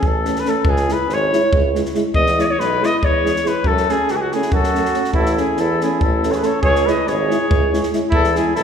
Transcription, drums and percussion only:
0.03 kick
0.25 snare
0.36 snare
0.45 snare
0.65 kick
0.76 snare
0.89 snare
1.09 snare
1.33 snare
1.53 kick
1.75 snare
1.85 snare
1.95 snare
2.14 kick
2.27 snare
2.39 snare
2.60 snare
2.83 snare
3.03 kick
3.26 snare
3.36 snare
3.46 snare
3.64 kick
3.77 snare
3.89 snare
4.08 snare
4.32 snare
4.42 snare
4.52 kick
4.64 snare
4.75 snare
4.85 snare
4.94 snare
5.04 snare
5.13 kick
5.26 snare
5.37 snare
5.57 snare
5.81 snare
6.01 kick
6.23 snare
6.32 snare
6.43 snare
6.63 kick
6.76 snare
6.87 snare
7.07 snare
7.31 snare
7.51 kick
7.74 snare
7.83 snare
7.93 snare
8.12 kick
8.24 snare
8.35 snare
8.56 snare

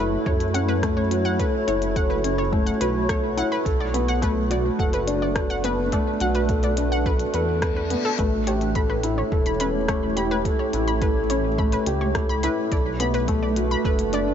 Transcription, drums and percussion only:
0.26 kick
0.40 closed hi-hat
0.55 closed hi-hat
0.83 kick, cross-stick, closed hi-hat
1.11 closed hi-hat
1.40 kick, closed hi-hat
1.68 closed hi-hat
1.82 closed hi-hat
1.96 kick, closed hi-hat
2.24 closed hi-hat
2.53 kick
2.67 closed hi-hat
2.81 closed hi-hat
3.09 kick, cross-stick, closed hi-hat
3.38 closed hi-hat
3.66 kick, closed hi-hat
3.94 closed hi-hat
4.08 closed hi-hat
4.22 kick, closed hi-hat
4.51 closed hi-hat
4.79 kick
4.93 closed hi-hat
5.08 closed hi-hat
5.36 kick, cross-stick, closed hi-hat
5.64 closed hi-hat
5.92 kick, closed hi-hat
6.20 closed hi-hat
6.35 closed hi-hat
6.49 kick, closed hi-hat
6.63 closed hi-hat
6.77 closed hi-hat
7.06 kick
7.19 closed hi-hat
7.34 closed hi-hat
7.62 kick, cross-stick, closed hi-hat
7.90 closed hi-hat
8.19 kick, closed hi-hat
8.47 closed hi-hat
8.61 closed hi-hat
8.75 kick, closed hi-hat
9.03 closed hi-hat
9.32 kick
9.46 closed hi-hat
9.60 closed hi-hat
9.88 kick, cross-stick, closed hi-hat
10.17 closed hi-hat
10.45 kick, closed hi-hat
10.73 closed hi-hat
10.88 closed hi-hat
11.02 kick, closed hi-hat
11.30 closed hi-hat
11.58 kick
11.72 closed hi-hat
11.86 closed hi-hat
12.15 kick, cross-stick, closed hi-hat
12.43 closed hi-hat
12.72 kick, closed hi-hat
13.00 closed hi-hat
13.14 closed hi-hat
13.28 kick, closed hi-hat
13.56 closed hi-hat
13.85 kick
13.99 closed hi-hat
14.13 closed hi-hat

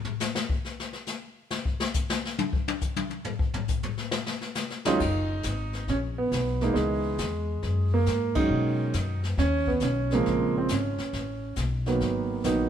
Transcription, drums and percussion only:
0.05 floor tom
0.20 snare, hi-hat pedal
0.35 snare
0.49 kick
0.65 snare
0.80 snare
0.93 snare
1.06 snare, hi-hat pedal
1.51 snare
1.65 kick
1.80 snare
1.94 kick, hi-hat pedal
2.10 snare
2.25 snare
2.38 high tom
2.53 kick
2.68 high tom
2.81 kick, hi-hat pedal
2.96 high tom
3.10 high tom
3.24 floor tom
3.39 kick
3.54 floor tom
3.68 kick, hi-hat pedal
3.83 floor tom
3.97 snare
4.11 snare
4.26 snare
4.41 snare
4.55 snare, hi-hat pedal
4.70 snare
4.85 snare
5.00 brush sweep, kick, snare, crash
5.43 kick, snare, hi-hat pedal
5.73 snare
5.88 brush sweep, kick, snare
6.32 kick, snare, hi-hat pedal
6.61 snare
6.75 brush sweep, kick, snare
7.18 kick, snare, hi-hat pedal
7.63 brush sweep, kick, snare
8.06 kick, snare, hi-hat pedal
8.35 kick, ride
8.49 brush sweep
8.93 kick, snare, hi-hat pedal
9.23 snare
9.38 brush sweep, kick, snare
9.67 kick
9.80 kick, snare, hi-hat pedal
10.11 snare
10.26 brush sweep, kick, snare
10.68 kick, snare, hi-hat pedal
10.98 snare
11.13 brush sweep, kick, snare
11.56 kick, snare, hi-hat pedal
11.86 snare
12.00 brush sweep, kick, snare
12.44 kick, snare, hi-hat pedal

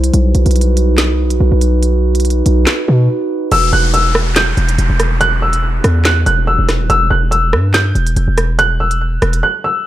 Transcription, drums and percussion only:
0.04 closed hi-hat
0.14 closed hi-hat
0.35 closed hi-hat
0.46 closed hi-hat
0.51 closed hi-hat
0.56 closed hi-hat
0.61 closed hi-hat
0.77 closed hi-hat
0.98 snare, clap, closed hi-hat
1.30 closed hi-hat
1.61 closed hi-hat
1.83 closed hi-hat
2.15 closed hi-hat
2.20 closed hi-hat
2.25 closed hi-hat
2.30 closed hi-hat
2.46 closed hi-hat
2.67 snare, clap, closed hi-hat
3.52 closed hi-hat, crash
3.94 closed hi-hat
4.15 cross-stick
4.36 snare, clap, closed hi-hat
4.57 closed hi-hat
4.69 closed hi-hat
4.79 closed hi-hat
5.00 cross-stick, closed hi-hat
5.21 closed hi-hat
5.53 closed hi-hat
5.84 cross-stick, closed hi-hat
6.05 snare, clap, closed hi-hat
6.26 closed hi-hat
6.69 cross-stick, snare, closed hi-hat
6.90 closed hi-hat
7.32 closed hi-hat
7.53 cross-stick
7.74 snare, clap, closed hi-hat
7.95 closed hi-hat
8.07 closed hi-hat
8.16 closed hi-hat
8.38 cross-stick, closed hi-hat
8.59 closed hi-hat
8.91 closed hi-hat
9.22 cross-stick, closed hi-hat
9.33 closed hi-hat

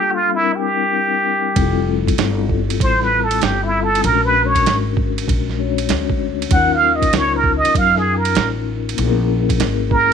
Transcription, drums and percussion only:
1.56 kick, ride
2.08 kick, ride
2.18 snare, hi-hat pedal, ride
2.49 kick
2.70 ride
2.80 kick, ride
3.02 snare
3.31 ride
3.42 snare, hi-hat pedal, ride
3.95 ride
4.04 ride
4.55 kick, ride
4.66 snare, hi-hat pedal, ride
4.97 kick
5.18 ride
5.28 kick, ride
5.49 snare
5.78 ride
5.89 snare, hi-hat pedal, ride
6.10 kick
6.42 ride
6.51 kick, ride
7.02 kick, ride
7.13 snare, hi-hat pedal, ride
7.44 kick
7.65 ride
7.75 kick, ride
7.96 snare
8.25 ride
8.35 snare, hi-hat pedal, ride
8.89 ride
8.98 ride
9.49 kick, ride
9.60 snare, hi-hat pedal, ride
9.91 kick

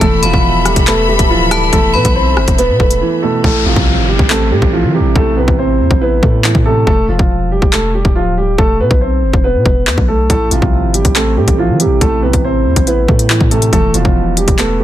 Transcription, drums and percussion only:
0.01 kick, closed hi-hat
0.23 closed hi-hat
0.33 kick
0.65 cross-stick, closed hi-hat
0.76 kick, closed hi-hat
0.87 clap, closed hi-hat
1.19 kick, closed hi-hat
1.51 cross-stick, closed hi-hat
1.73 kick, closed hi-hat
2.05 kick, closed hi-hat
2.37 cross-stick
2.48 kick, closed hi-hat
2.58 closed hi-hat
2.80 kick
2.91 closed hi-hat
3.44 kick
3.76 kick
4.19 kick
4.30 clap
4.62 kick
5.16 kick
5.48 kick
5.91 kick
6.23 kick
6.44 clap
6.55 kick
6.87 kick
7.19 kick
7.62 kick
7.73 clap
8.05 kick
8.58 kick
8.91 kick
9.33 kick
9.66 kick
9.87 clap
9.98 kick
10.30 kick, closed hi-hat
10.51 closed hi-hat
10.62 kick
10.94 closed hi-hat
11.05 kick, closed hi-hat
11.16 clap, closed hi-hat
11.48 kick, closed hi-hat
11.80 closed hi-hat
12.01 kick, closed hi-hat
12.33 kick, closed hi-hat
12.76 kick, closed hi-hat
12.87 closed hi-hat
13.08 kick
13.19 closed hi-hat
13.30 clap
13.41 kick
13.51 closed hi-hat
13.62 closed hi-hat
13.73 kick, closed hi-hat
13.94 closed hi-hat
14.05 kick
14.37 closed hi-hat
14.48 kick, closed hi-hat
14.58 clap, closed hi-hat

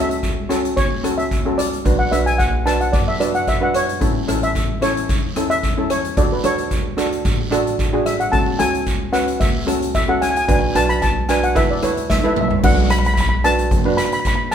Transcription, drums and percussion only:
0.11 closed hi-hat
0.23 kick, closed hi-hat, short guiro
0.50 cross-stick, closed hi-hat, short guiro
0.65 closed hi-hat
0.77 kick, closed hi-hat, short guiro, long guiro
1.04 cross-stick, closed hi-hat
1.19 closed hi-hat
1.31 kick, closed hi-hat, short guiro
1.59 cross-stick, closed hi-hat
1.73 closed hi-hat
1.85 kick, closed hi-hat, long guiro
2.13 cross-stick, closed hi-hat
2.27 closed hi-hat
2.40 kick, closed hi-hat, short guiro
2.67 cross-stick, closed hi-hat, short guiro
2.81 closed hi-hat
2.93 kick, closed hi-hat, short guiro, long guiro
3.21 cross-stick, closed hi-hat
3.35 closed hi-hat
3.47 kick, closed hi-hat, short guiro
3.74 cross-stick, closed hi-hat
3.89 closed hi-hat
4.01 kick, closed hi-hat, long guiro
4.29 cross-stick, closed hi-hat
4.43 closed hi-hat
4.55 kick, closed hi-hat, short guiro
4.82 cross-stick, closed hi-hat, short guiro
4.97 closed hi-hat
5.09 kick, closed hi-hat, short guiro, long guiro
5.36 cross-stick, closed hi-hat
5.51 closed hi-hat
5.63 kick, closed hi-hat, short guiro
5.90 cross-stick, closed hi-hat
6.05 closed hi-hat
6.17 kick, closed hi-hat, long guiro
6.44 cross-stick, closed hi-hat
6.58 closed hi-hat
6.71 kick, closed hi-hat, short guiro
6.98 cross-stick, closed hi-hat, short guiro
7.12 closed hi-hat
7.25 kick, closed hi-hat, short guiro, long guiro
7.52 cross-stick, closed hi-hat
7.67 closed hi-hat
7.79 kick, closed hi-hat, short guiro
8.06 cross-stick, closed hi-hat
8.20 closed hi-hat
8.33 kick, closed hi-hat, long guiro
8.59 cross-stick, closed hi-hat
8.74 closed hi-hat
8.86 kick, closed hi-hat, short guiro
9.14 cross-stick, closed hi-hat, short guiro
9.28 closed hi-hat
9.41 kick, closed hi-hat, short guiro, long guiro
9.68 cross-stick, closed hi-hat
9.82 closed hi-hat
9.94 kick, closed hi-hat, short guiro
10.22 cross-stick, closed hi-hat
10.36 closed hi-hat
10.48 kick, closed hi-hat, long guiro
10.75 cross-stick, closed hi-hat
10.90 closed hi-hat
11.02 kick, closed hi-hat, short guiro
11.29 cross-stick, closed hi-hat, short guiro
11.43 closed hi-hat
11.55 kick, closed hi-hat, short guiro, long guiro
11.83 cross-stick, closed hi-hat
11.97 closed hi-hat
12.10 kick, snare, short guiro
12.25 high tom
12.36 mid tom
12.51 floor tom
12.63 kick, crash, long guiro
12.90 cross-stick, closed hi-hat
13.05 closed hi-hat
13.17 kick, closed hi-hat, short guiro
13.45 cross-stick, closed hi-hat
13.59 closed hi-hat
13.71 kick, closed hi-hat, long guiro
13.98 cross-stick, closed hi-hat, short guiro
14.12 closed hi-hat
14.25 kick, closed hi-hat, short guiro
14.52 short guiro

